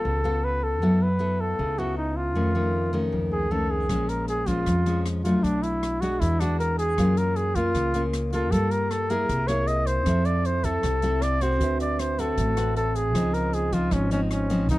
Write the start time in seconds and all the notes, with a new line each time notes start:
Already playing: B3 F4 A4
0.05 C#2 C#3
0.24 B3 F4 A4
0.44 B4
0.64 A4
0.82 F#2 F#3 B3 E4 A4
1.02 B4
1.19 B3 E4 A4
1.41 A4
1.59 C#2 C#3
1.78 B3 E4 F#4 A4
1.97 D#4
2.16 F4
2.35 F2 D#3 A3 C#4
2.55 D#3 A3 C#4
2.93 D#3 A3 C#4
3.12 C#2 F2
3.32 G#4
3.51 D#3 A3 C#4 A4
3.71 G#4
3.89 A#1 A#2 F3 G#3 C#4, kick, cross-stick, closed hi-hat
4.09 A#4, closed hi-hat
4.28 G#4, closed hi-hat
4.46 F3 G#3 C#4 F4, kick, closed hi-hat
4.66 F2, kick, cross-stick, closed hi-hat
4.86 F3 G#3 C#4, closed hi-hat
5.06 cross-stick, closed hi-hat
5.24 F#3 A3 D4 F4, closed hi-hat
5.43 B1 B2 D4, kick, closed hi-hat
5.63 E4, closed hi-hat
5.83 cross-stick, closed hi-hat
6.01 G#3 D4 F#4, closed hi-hat
6.20 E2 E3 E4, kick, closed hi-hat
6.40 G#3 D4 F#4, cross-stick, closed hi-hat
6.59 A#4, closed hi-hat
6.78 G#4, closed hi-hat
6.98 F#2 F#3 A#3 C#4 F4, kick, cross-stick, closed hi-hat
7.17 A#4, closed hi-hat
7.36 G#4, closed hi-hat
7.55 A#3 C#4 F4, kick, closed hi-hat
7.75 C#2 C#3, kick, cross-stick, closed hi-hat
7.94 A#3 C#4 F4, closed hi-hat
8.13 cross-stick, closed hi-hat
8.33 A#3 F4 A4, closed hi-hat
8.52 G2 G3 A4, kick, closed hi-hat
8.71 A#4, closed hi-hat
8.91 A4, cross-stick, closed hi-hat
9.10 A#3 E4 G#4 A#4, closed hi-hat
9.29 C2 C3, kick, closed hi-hat
9.48 A#3 E4 G#4 C#5, cross-stick, closed hi-hat
9.68 D#5, closed hi-hat
9.87 C5, closed hi-hat
10.04 F2 F3 C4 E4 A4, kick, cross-stick, closed hi-hat
10.08 A4 E5
10.25 D5, closed hi-hat
10.45 C5, closed hi-hat
10.64 C4 E4 A4, kick, closed hi-hat
10.83 C2 C3, kick, cross-stick, closed hi-hat
11.02 C4 E4 A4, closed hi-hat
11.22 D5, cross-stick, closed hi-hat
11.41 C4 F#4 C5, closed hi-hat
11.58 D2 D3 C4 F#4, kick, closed hi-hat
11.62 B4 E5
11.80 D5, closed hi-hat
11.99 C5, cross-stick, closed hi-hat
12.19 C4 F#4 A4 B4, closed hi-hat
12.38 A1 A2, kick, closed hi-hat
12.57 C4 F#4 B4, cross-stick, closed hi-hat
12.76 A4, closed hi-hat
12.96 G#4, closed hi-hat
13.14 C#2 C#3 F3 C4 D#4 F4 C5 D#5, kick, cross-stick, closed hi-hat
13.34 A#4, closed hi-hat
13.53 G#4, closed hi-hat
13.72 F3 C4 D#4 F4, kick, closed hi-hat
13.91 G#1 G#2 C#4, kick, cross-stick, closed hi-hat
14.11 F3 C4 C#4 D#4, closed hi-hat
14.31 C#4, cross-stick, closed hi-hat
14.50 F3 C4 D#4, closed hi-hat
14.69 C#2 C#3 F3 C4 D#4, kick, closed hi-hat